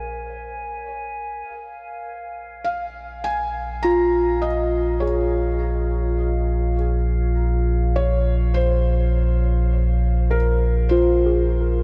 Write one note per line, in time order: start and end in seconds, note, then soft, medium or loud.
0.00 1.43 A#1 medium
0.00 0.73 A#4 medium
0.00 1.52 G#5 medium
1.50 11.83 A#1 medium
1.50 11.83 F5 medium
2.64 3.26 F5 medium
3.24 3.85 G#5 medium
3.83 6.61 F4 medium
3.83 4.44 A#5 medium
4.42 5.03 D#5 medium
5.00 7.78 G#4 soft
5.00 6.74 C#5 medium
7.96 8.57 C#5 medium
8.54 10.36 C5 medium
10.31 10.92 A#4 medium
10.89 11.83 F4 medium
10.89 11.83 C5 medium
11.26 11.83 G#4 soft
11.61 11.83 A#4 soft